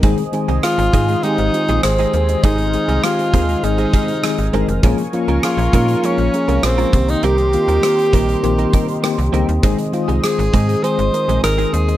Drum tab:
HH |xxxxxxxxxxxxxxxx|xxxxxxxxxxxxxxxx|xxxxxxxxxxxxxxxx|xxxxxxxxxxxxxxxx|
SD |----r-------r---|----r-------r---|----r-------r---|----r-------r---|
BD |o-----o---------|o-----o---o-----|o-----o-------o-|------o---o-----|

HH |xxxxxxxxxxxxxxxx|
SD |----r-------r---|
BD |o-----o---------|